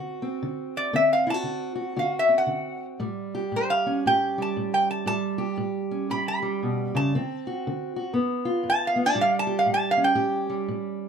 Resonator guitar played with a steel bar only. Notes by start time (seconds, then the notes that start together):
0.77 D5
0.96 E5
1.13 F5
1.30 A5
1.99 F5
2.19 E5
2.38 F#5
3.56 C5
3.70 F5
4.07 G5
4.42 A5
4.74 G5
4.91 A5
5.07 A5
6.11 B5
6.28 B5
6.96 A5
8.70 A5
8.87 F5
9.06 A5
9.21 F5
9.39 A5
9.59 F5
9.74 A5
9.91 F5
10.04 G5